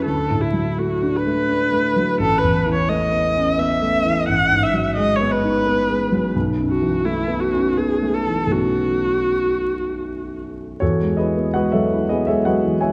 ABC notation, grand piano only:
X:1
M:3/4
L:1/16
Q:1/4=85
K:D
V:1 name="Grand piano"
z12 | [K:E] z12 | z12 | z12 |
z12 | [FAc]2 [GBd]2 [FBdf] [Ace]2 [GBd] [Ace] [FBdf]2 [Gceg] |]
V:2 name="Grand piano" clef=bass
(3D,,2 A,,2 F,2 (3A,2 D2 A,2 (3D2 A,2 F,2 | [K:E] (3A,,,2 E,,2 E,2 (3A,2 B,2 C2 (3B,2 A,2 E,2 | (3A,,,2 G,,2 F,2 (3G,2 B,2 D2 (3B,2 G,2 F,2 | (3B,,,2 F,,2 E,2 (3A,2 B,2 C2 (3B,2 A,2 E,2 |
[B,,,E,A,B,C]12 | E,, G, E B, G, F, E B, G, F, E, G, |]